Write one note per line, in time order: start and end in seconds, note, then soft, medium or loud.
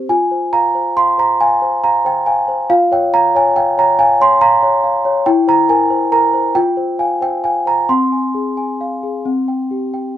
0.00 0.11 C4 medium
0.00 0.12 G4 soft
0.00 0.11 C5 medium
0.09 2.66 F4 medium
0.09 0.53 G#5 loud
0.31 0.66 C5 medium
0.53 0.88 F5 medium
0.53 0.97 A#5 loud
0.75 1.10 C5 medium
0.97 1.31 F5 medium
0.97 1.18 C6 loud
1.18 1.53 C5 medium
1.18 1.41 A#5 medium
1.40 1.75 F5 medium
1.40 1.84 G#5 loud
1.62 1.97 C5 medium
1.84 2.18 F5 medium
1.84 2.05 A#5 loud
2.05 2.40 C5 medium
2.05 2.27 G5 medium
2.26 2.61 F5 medium
2.26 2.70 G#5 medium
2.48 2.70 C5 medium
2.70 5.22 F4 medium
2.70 2.92 F5 loud
2.92 3.26 C#5 medium
2.92 3.14 G5 medium
3.14 3.48 F5 medium
3.14 3.35 A#5 loud
3.35 3.69 C#5 medium
3.35 3.57 G#5 loud
3.56 3.91 F5 medium
3.56 3.78 G5 loud
3.78 4.12 C#5 medium
3.78 4.00 A#5 loud
3.99 4.33 F5 medium
3.99 4.20 G#5 loud
4.20 4.54 C#5 medium
4.20 4.42 C6 loud
4.41 4.75 F5 medium
4.41 5.26 A#5 loud
4.63 4.97 C#5 medium
4.84 5.18 F5 medium
5.05 5.26 C#5 medium
5.26 6.51 E4 medium
5.26 5.47 G5 loud
5.48 5.82 C5 medium
5.48 5.70 A#5 loud
5.69 6.03 A#4 medium
5.69 6.12 G#5 loud
5.90 6.25 C5 medium
6.12 6.47 A#4 medium
6.12 6.55 A#5 loud
6.34 6.55 C5 medium
6.55 7.85 F4 medium
6.55 6.99 G5 loud
6.77 7.12 C5 medium
6.99 7.35 F5 medium
6.99 7.21 G#5 medium
7.21 7.57 C5 medium
7.21 7.44 G5 medium
7.44 7.80 F5 soft
7.44 7.66 G#5 medium
7.66 7.89 C5 soft
7.66 7.89 A#5 medium
7.89 9.21 C4 medium
7.89 10.16 C6 medium
8.12 8.48 G#5 soft
8.35 8.71 G#4 soft
8.57 8.93 G#5 medium
8.81 9.16 F5 medium
9.03 9.25 G#4 soft
9.25 10.17 C4 medium
9.48 9.84 G5 medium
9.71 10.07 G4 soft
9.94 10.17 G5 medium